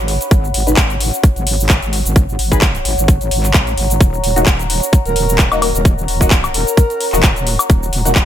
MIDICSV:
0, 0, Header, 1, 6, 480
1, 0, Start_track
1, 0, Key_signature, 5, "minor"
1, 0, Tempo, 461538
1, 324, Time_signature, 4, 2, 24, 8
1, 8580, End_track
2, 0, Start_track
2, 0, Title_t, "Ambient pad"
2, 0, Program_c, 0, 92
2, 0, Note_on_c, 0, 73, 80
2, 0, Note_on_c, 0, 78, 79
2, 0, Note_on_c, 0, 83, 86
2, 1198, Note_on_c, 0, 82, 85
2, 1336, Note_off_c, 0, 83, 0
2, 8580, Note_off_c, 0, 73, 0
2, 8580, Note_off_c, 0, 78, 0
2, 8580, Note_off_c, 0, 82, 0
2, 8580, End_track
3, 0, Start_track
3, 0, Title_t, "Soft synth lead"
3, 0, Program_c, 1, 80
3, 5257, Note_on_c, 1, 70, 97
3, 5605, Note_off_c, 1, 70, 0
3, 5844, Note_on_c, 1, 70, 87
3, 5929, Note_off_c, 1, 70, 0
3, 5976, Note_on_c, 1, 70, 79
3, 6046, Note_off_c, 1, 70, 0
3, 6805, Note_on_c, 1, 70, 93
3, 7481, Note_off_c, 1, 70, 0
3, 8580, End_track
4, 0, Start_track
4, 0, Title_t, "Synth stab"
4, 0, Program_c, 2, 62
4, 695, Note_on_c, 2, 71, 94
4, 696, Note_on_c, 2, 63, 83
4, 696, Note_on_c, 2, 68, 75
4, 800, Note_off_c, 2, 63, 0
4, 800, Note_off_c, 2, 68, 0
4, 800, Note_off_c, 2, 71, 0
4, 2617, Note_on_c, 2, 68, 86
4, 2617, Note_on_c, 2, 71, 106
4, 2618, Note_on_c, 2, 63, 94
4, 2721, Note_off_c, 2, 63, 0
4, 2721, Note_off_c, 2, 68, 0
4, 2721, Note_off_c, 2, 71, 0
4, 4537, Note_on_c, 2, 58, 84
4, 4537, Note_on_c, 2, 63, 77
4, 4537, Note_on_c, 2, 66, 94
4, 4641, Note_off_c, 2, 58, 0
4, 4641, Note_off_c, 2, 63, 0
4, 4641, Note_off_c, 2, 66, 0
4, 5737, Note_on_c, 2, 58, 75
4, 5737, Note_on_c, 2, 63, 71
4, 5737, Note_on_c, 2, 66, 88
4, 5916, Note_off_c, 2, 58, 0
4, 5916, Note_off_c, 2, 63, 0
4, 5916, Note_off_c, 2, 66, 0
4, 6456, Note_on_c, 2, 63, 90
4, 6456, Note_on_c, 2, 66, 104
4, 6457, Note_on_c, 2, 58, 93
4, 6560, Note_off_c, 2, 63, 0
4, 6561, Note_off_c, 2, 58, 0
4, 6561, Note_off_c, 2, 66, 0
4, 7416, Note_on_c, 2, 58, 87
4, 7416, Note_on_c, 2, 63, 83
4, 7416, Note_on_c, 2, 66, 101
4, 7595, Note_off_c, 2, 58, 0
4, 7595, Note_off_c, 2, 63, 0
4, 7595, Note_off_c, 2, 66, 0
4, 8375, Note_on_c, 2, 58, 83
4, 8375, Note_on_c, 2, 63, 78
4, 8375, Note_on_c, 2, 66, 93
4, 8480, Note_off_c, 2, 58, 0
4, 8480, Note_off_c, 2, 63, 0
4, 8480, Note_off_c, 2, 66, 0
4, 8580, End_track
5, 0, Start_track
5, 0, Title_t, "Wobble bass"
5, 0, Program_c, 3, 39
5, 0, Note_on_c, 3, 32, 94
5, 195, Note_off_c, 3, 32, 0
5, 324, Note_on_c, 3, 32, 102
5, 547, Note_off_c, 3, 32, 0
5, 564, Note_on_c, 3, 32, 99
5, 787, Note_off_c, 3, 32, 0
5, 805, Note_on_c, 3, 32, 91
5, 1155, Note_off_c, 3, 32, 0
5, 1416, Note_on_c, 3, 32, 94
5, 1875, Note_off_c, 3, 32, 0
5, 1896, Note_on_c, 3, 32, 101
5, 2115, Note_off_c, 3, 32, 0
5, 2136, Note_on_c, 3, 32, 99
5, 2467, Note_off_c, 3, 32, 0
5, 2485, Note_on_c, 3, 32, 104
5, 2947, Note_off_c, 3, 32, 0
5, 2965, Note_on_c, 3, 32, 97
5, 3075, Note_off_c, 3, 32, 0
5, 3096, Note_on_c, 3, 32, 98
5, 3428, Note_off_c, 3, 32, 0
5, 3445, Note_on_c, 3, 32, 102
5, 3668, Note_off_c, 3, 32, 0
5, 3685, Note_on_c, 3, 34, 98
5, 3908, Note_off_c, 3, 34, 0
5, 3926, Note_on_c, 3, 32, 97
5, 4148, Note_off_c, 3, 32, 0
5, 4166, Note_on_c, 3, 27, 101
5, 4388, Note_off_c, 3, 27, 0
5, 4405, Note_on_c, 3, 27, 98
5, 4628, Note_off_c, 3, 27, 0
5, 4646, Note_on_c, 3, 27, 96
5, 4996, Note_off_c, 3, 27, 0
5, 5257, Note_on_c, 3, 27, 98
5, 5715, Note_off_c, 3, 27, 0
5, 5737, Note_on_c, 3, 27, 101
5, 5955, Note_off_c, 3, 27, 0
5, 5976, Note_on_c, 3, 27, 95
5, 6307, Note_off_c, 3, 27, 0
5, 6324, Note_on_c, 3, 27, 102
5, 6787, Note_off_c, 3, 27, 0
5, 6804, Note_on_c, 3, 27, 96
5, 6915, Note_off_c, 3, 27, 0
5, 7416, Note_on_c, 3, 27, 95
5, 7875, Note_off_c, 3, 27, 0
5, 8005, Note_on_c, 3, 27, 101
5, 8227, Note_off_c, 3, 27, 0
5, 8244, Note_on_c, 3, 27, 104
5, 8467, Note_off_c, 3, 27, 0
5, 8485, Note_on_c, 3, 27, 94
5, 8580, Note_off_c, 3, 27, 0
5, 8580, End_track
6, 0, Start_track
6, 0, Title_t, "Drums"
6, 84, Note_on_c, 9, 46, 99
6, 188, Note_off_c, 9, 46, 0
6, 216, Note_on_c, 9, 42, 53
6, 223, Note_on_c, 9, 82, 64
6, 320, Note_off_c, 9, 42, 0
6, 324, Note_on_c, 9, 36, 124
6, 324, Note_on_c, 9, 42, 76
6, 327, Note_off_c, 9, 82, 0
6, 331, Note_on_c, 9, 82, 51
6, 428, Note_off_c, 9, 36, 0
6, 428, Note_off_c, 9, 42, 0
6, 435, Note_off_c, 9, 82, 0
6, 463, Note_on_c, 9, 82, 31
6, 564, Note_on_c, 9, 46, 107
6, 567, Note_off_c, 9, 82, 0
6, 668, Note_off_c, 9, 46, 0
6, 696, Note_on_c, 9, 42, 50
6, 702, Note_on_c, 9, 82, 62
6, 799, Note_on_c, 9, 39, 126
6, 800, Note_off_c, 9, 42, 0
6, 804, Note_on_c, 9, 36, 127
6, 805, Note_on_c, 9, 42, 76
6, 806, Note_off_c, 9, 82, 0
6, 812, Note_on_c, 9, 82, 51
6, 903, Note_off_c, 9, 39, 0
6, 908, Note_off_c, 9, 36, 0
6, 909, Note_off_c, 9, 42, 0
6, 916, Note_off_c, 9, 82, 0
6, 937, Note_on_c, 9, 42, 34
6, 943, Note_on_c, 9, 82, 30
6, 1041, Note_off_c, 9, 42, 0
6, 1045, Note_on_c, 9, 46, 111
6, 1047, Note_off_c, 9, 82, 0
6, 1149, Note_off_c, 9, 46, 0
6, 1177, Note_on_c, 9, 42, 34
6, 1184, Note_on_c, 9, 82, 61
6, 1281, Note_off_c, 9, 42, 0
6, 1285, Note_on_c, 9, 36, 118
6, 1285, Note_on_c, 9, 42, 83
6, 1288, Note_off_c, 9, 82, 0
6, 1292, Note_on_c, 9, 82, 55
6, 1389, Note_off_c, 9, 36, 0
6, 1389, Note_off_c, 9, 42, 0
6, 1396, Note_off_c, 9, 82, 0
6, 1418, Note_on_c, 9, 42, 37
6, 1424, Note_on_c, 9, 82, 32
6, 1522, Note_off_c, 9, 42, 0
6, 1526, Note_on_c, 9, 46, 112
6, 1528, Note_off_c, 9, 82, 0
6, 1630, Note_off_c, 9, 46, 0
6, 1664, Note_on_c, 9, 82, 60
6, 1760, Note_on_c, 9, 39, 117
6, 1765, Note_on_c, 9, 36, 127
6, 1766, Note_on_c, 9, 42, 73
6, 1768, Note_off_c, 9, 82, 0
6, 1773, Note_on_c, 9, 82, 50
6, 1864, Note_off_c, 9, 39, 0
6, 1869, Note_off_c, 9, 36, 0
6, 1870, Note_off_c, 9, 42, 0
6, 1877, Note_off_c, 9, 82, 0
6, 1897, Note_on_c, 9, 42, 36
6, 1904, Note_on_c, 9, 82, 32
6, 2001, Note_off_c, 9, 42, 0
6, 2005, Note_on_c, 9, 46, 101
6, 2008, Note_off_c, 9, 82, 0
6, 2109, Note_off_c, 9, 46, 0
6, 2137, Note_on_c, 9, 42, 50
6, 2144, Note_on_c, 9, 82, 65
6, 2241, Note_off_c, 9, 42, 0
6, 2245, Note_on_c, 9, 36, 119
6, 2245, Note_on_c, 9, 42, 73
6, 2248, Note_off_c, 9, 82, 0
6, 2252, Note_on_c, 9, 82, 52
6, 2349, Note_off_c, 9, 36, 0
6, 2349, Note_off_c, 9, 42, 0
6, 2356, Note_off_c, 9, 82, 0
6, 2384, Note_on_c, 9, 82, 32
6, 2486, Note_on_c, 9, 46, 112
6, 2488, Note_off_c, 9, 82, 0
6, 2590, Note_off_c, 9, 46, 0
6, 2617, Note_on_c, 9, 36, 65
6, 2617, Note_on_c, 9, 42, 49
6, 2624, Note_on_c, 9, 82, 64
6, 2719, Note_on_c, 9, 39, 120
6, 2721, Note_off_c, 9, 36, 0
6, 2721, Note_off_c, 9, 42, 0
6, 2725, Note_on_c, 9, 36, 123
6, 2726, Note_on_c, 9, 42, 73
6, 2728, Note_off_c, 9, 82, 0
6, 2732, Note_on_c, 9, 82, 55
6, 2823, Note_off_c, 9, 39, 0
6, 2829, Note_off_c, 9, 36, 0
6, 2830, Note_off_c, 9, 42, 0
6, 2836, Note_off_c, 9, 82, 0
6, 2858, Note_on_c, 9, 42, 34
6, 2864, Note_on_c, 9, 82, 32
6, 2962, Note_off_c, 9, 42, 0
6, 2965, Note_on_c, 9, 46, 105
6, 2968, Note_off_c, 9, 82, 0
6, 3069, Note_off_c, 9, 46, 0
6, 3098, Note_on_c, 9, 42, 35
6, 3104, Note_on_c, 9, 82, 66
6, 3202, Note_off_c, 9, 42, 0
6, 3206, Note_on_c, 9, 36, 115
6, 3206, Note_on_c, 9, 42, 76
6, 3208, Note_off_c, 9, 82, 0
6, 3213, Note_on_c, 9, 82, 54
6, 3310, Note_off_c, 9, 36, 0
6, 3310, Note_off_c, 9, 42, 0
6, 3317, Note_off_c, 9, 82, 0
6, 3338, Note_on_c, 9, 42, 36
6, 3344, Note_on_c, 9, 82, 34
6, 3442, Note_off_c, 9, 42, 0
6, 3446, Note_on_c, 9, 46, 111
6, 3448, Note_off_c, 9, 82, 0
6, 3550, Note_off_c, 9, 46, 0
6, 3572, Note_on_c, 9, 39, 35
6, 3578, Note_on_c, 9, 42, 34
6, 3584, Note_on_c, 9, 82, 60
6, 3676, Note_off_c, 9, 39, 0
6, 3680, Note_on_c, 9, 39, 113
6, 3682, Note_off_c, 9, 42, 0
6, 3685, Note_on_c, 9, 36, 124
6, 3687, Note_on_c, 9, 42, 75
6, 3688, Note_off_c, 9, 82, 0
6, 3693, Note_on_c, 9, 82, 53
6, 3784, Note_off_c, 9, 39, 0
6, 3789, Note_off_c, 9, 36, 0
6, 3791, Note_off_c, 9, 42, 0
6, 3797, Note_off_c, 9, 82, 0
6, 3818, Note_on_c, 9, 42, 36
6, 3824, Note_on_c, 9, 82, 32
6, 3922, Note_off_c, 9, 42, 0
6, 3926, Note_on_c, 9, 46, 105
6, 3928, Note_off_c, 9, 82, 0
6, 4030, Note_off_c, 9, 46, 0
6, 4058, Note_on_c, 9, 42, 51
6, 4064, Note_on_c, 9, 82, 63
6, 4162, Note_off_c, 9, 42, 0
6, 4166, Note_on_c, 9, 36, 113
6, 4166, Note_on_c, 9, 42, 72
6, 4168, Note_off_c, 9, 82, 0
6, 4173, Note_on_c, 9, 82, 55
6, 4270, Note_off_c, 9, 36, 0
6, 4270, Note_off_c, 9, 42, 0
6, 4277, Note_off_c, 9, 82, 0
6, 4304, Note_on_c, 9, 82, 34
6, 4406, Note_on_c, 9, 46, 105
6, 4408, Note_off_c, 9, 82, 0
6, 4510, Note_off_c, 9, 46, 0
6, 4538, Note_on_c, 9, 42, 50
6, 4544, Note_on_c, 9, 82, 68
6, 4639, Note_on_c, 9, 39, 111
6, 4642, Note_off_c, 9, 42, 0
6, 4645, Note_on_c, 9, 36, 116
6, 4645, Note_on_c, 9, 42, 74
6, 4648, Note_off_c, 9, 82, 0
6, 4652, Note_on_c, 9, 82, 57
6, 4743, Note_off_c, 9, 39, 0
6, 4749, Note_off_c, 9, 36, 0
6, 4749, Note_off_c, 9, 42, 0
6, 4756, Note_off_c, 9, 82, 0
6, 4778, Note_on_c, 9, 42, 34
6, 4784, Note_on_c, 9, 82, 33
6, 4882, Note_off_c, 9, 42, 0
6, 4886, Note_on_c, 9, 46, 107
6, 4888, Note_off_c, 9, 82, 0
6, 4990, Note_off_c, 9, 46, 0
6, 5024, Note_on_c, 9, 82, 66
6, 5125, Note_on_c, 9, 36, 112
6, 5126, Note_on_c, 9, 42, 77
6, 5128, Note_off_c, 9, 82, 0
6, 5132, Note_on_c, 9, 82, 59
6, 5229, Note_off_c, 9, 36, 0
6, 5230, Note_off_c, 9, 42, 0
6, 5236, Note_off_c, 9, 82, 0
6, 5257, Note_on_c, 9, 42, 37
6, 5264, Note_on_c, 9, 82, 35
6, 5361, Note_off_c, 9, 42, 0
6, 5365, Note_on_c, 9, 46, 106
6, 5368, Note_off_c, 9, 82, 0
6, 5469, Note_off_c, 9, 46, 0
6, 5504, Note_on_c, 9, 82, 67
6, 5600, Note_on_c, 9, 39, 107
6, 5605, Note_on_c, 9, 36, 117
6, 5606, Note_on_c, 9, 42, 70
6, 5608, Note_off_c, 9, 82, 0
6, 5612, Note_on_c, 9, 82, 53
6, 5704, Note_off_c, 9, 39, 0
6, 5709, Note_off_c, 9, 36, 0
6, 5710, Note_off_c, 9, 42, 0
6, 5716, Note_off_c, 9, 82, 0
6, 5737, Note_on_c, 9, 42, 34
6, 5737, Note_on_c, 9, 76, 79
6, 5744, Note_on_c, 9, 82, 33
6, 5841, Note_off_c, 9, 42, 0
6, 5841, Note_off_c, 9, 76, 0
6, 5846, Note_on_c, 9, 46, 106
6, 5846, Note_on_c, 9, 76, 67
6, 5848, Note_off_c, 9, 82, 0
6, 5950, Note_off_c, 9, 46, 0
6, 5950, Note_off_c, 9, 76, 0
6, 5977, Note_on_c, 9, 42, 50
6, 5984, Note_on_c, 9, 82, 65
6, 6081, Note_off_c, 9, 42, 0
6, 6085, Note_on_c, 9, 36, 108
6, 6086, Note_on_c, 9, 42, 80
6, 6088, Note_off_c, 9, 82, 0
6, 6093, Note_on_c, 9, 82, 57
6, 6189, Note_off_c, 9, 36, 0
6, 6190, Note_off_c, 9, 42, 0
6, 6197, Note_off_c, 9, 82, 0
6, 6224, Note_on_c, 9, 82, 35
6, 6326, Note_on_c, 9, 46, 105
6, 6328, Note_off_c, 9, 82, 0
6, 6430, Note_off_c, 9, 46, 0
6, 6457, Note_on_c, 9, 36, 64
6, 6458, Note_on_c, 9, 42, 51
6, 6464, Note_on_c, 9, 82, 69
6, 6560, Note_on_c, 9, 39, 116
6, 6561, Note_off_c, 9, 36, 0
6, 6562, Note_off_c, 9, 42, 0
6, 6565, Note_on_c, 9, 36, 118
6, 6566, Note_on_c, 9, 42, 76
6, 6568, Note_off_c, 9, 82, 0
6, 6572, Note_on_c, 9, 82, 59
6, 6664, Note_off_c, 9, 39, 0
6, 6669, Note_off_c, 9, 36, 0
6, 6670, Note_off_c, 9, 42, 0
6, 6676, Note_off_c, 9, 82, 0
6, 6698, Note_on_c, 9, 42, 35
6, 6698, Note_on_c, 9, 76, 61
6, 6704, Note_on_c, 9, 82, 34
6, 6802, Note_off_c, 9, 42, 0
6, 6802, Note_off_c, 9, 76, 0
6, 6805, Note_on_c, 9, 46, 102
6, 6808, Note_off_c, 9, 82, 0
6, 6909, Note_off_c, 9, 46, 0
6, 6937, Note_on_c, 9, 42, 35
6, 6944, Note_on_c, 9, 82, 69
6, 7041, Note_off_c, 9, 42, 0
6, 7045, Note_on_c, 9, 36, 108
6, 7046, Note_on_c, 9, 42, 85
6, 7048, Note_off_c, 9, 82, 0
6, 7052, Note_on_c, 9, 82, 61
6, 7149, Note_off_c, 9, 36, 0
6, 7150, Note_off_c, 9, 42, 0
6, 7156, Note_off_c, 9, 82, 0
6, 7177, Note_on_c, 9, 42, 37
6, 7184, Note_on_c, 9, 82, 34
6, 7281, Note_off_c, 9, 42, 0
6, 7285, Note_on_c, 9, 46, 105
6, 7288, Note_off_c, 9, 82, 0
6, 7389, Note_off_c, 9, 46, 0
6, 7411, Note_on_c, 9, 39, 34
6, 7424, Note_on_c, 9, 82, 67
6, 7515, Note_off_c, 9, 39, 0
6, 7520, Note_on_c, 9, 39, 108
6, 7525, Note_on_c, 9, 36, 120
6, 7526, Note_on_c, 9, 42, 75
6, 7528, Note_off_c, 9, 82, 0
6, 7532, Note_on_c, 9, 82, 54
6, 7624, Note_off_c, 9, 39, 0
6, 7629, Note_off_c, 9, 36, 0
6, 7630, Note_off_c, 9, 42, 0
6, 7636, Note_off_c, 9, 82, 0
6, 7657, Note_on_c, 9, 42, 36
6, 7664, Note_on_c, 9, 82, 35
6, 7761, Note_off_c, 9, 42, 0
6, 7765, Note_on_c, 9, 46, 98
6, 7768, Note_off_c, 9, 82, 0
6, 7869, Note_off_c, 9, 46, 0
6, 7897, Note_on_c, 9, 42, 53
6, 7897, Note_on_c, 9, 76, 67
6, 7903, Note_on_c, 9, 82, 68
6, 8001, Note_off_c, 9, 42, 0
6, 8001, Note_off_c, 9, 76, 0
6, 8004, Note_on_c, 9, 42, 78
6, 8005, Note_on_c, 9, 36, 113
6, 8007, Note_off_c, 9, 82, 0
6, 8011, Note_on_c, 9, 82, 56
6, 8108, Note_off_c, 9, 42, 0
6, 8109, Note_off_c, 9, 36, 0
6, 8115, Note_off_c, 9, 82, 0
6, 8143, Note_on_c, 9, 82, 36
6, 8245, Note_on_c, 9, 46, 98
6, 8247, Note_off_c, 9, 82, 0
6, 8349, Note_off_c, 9, 46, 0
6, 8376, Note_on_c, 9, 42, 54
6, 8383, Note_on_c, 9, 82, 71
6, 8479, Note_on_c, 9, 39, 114
6, 8480, Note_off_c, 9, 42, 0
6, 8485, Note_on_c, 9, 36, 111
6, 8485, Note_on_c, 9, 42, 85
6, 8487, Note_off_c, 9, 82, 0
6, 8492, Note_on_c, 9, 82, 59
6, 8580, Note_off_c, 9, 36, 0
6, 8580, Note_off_c, 9, 39, 0
6, 8580, Note_off_c, 9, 42, 0
6, 8580, Note_off_c, 9, 82, 0
6, 8580, End_track
0, 0, End_of_file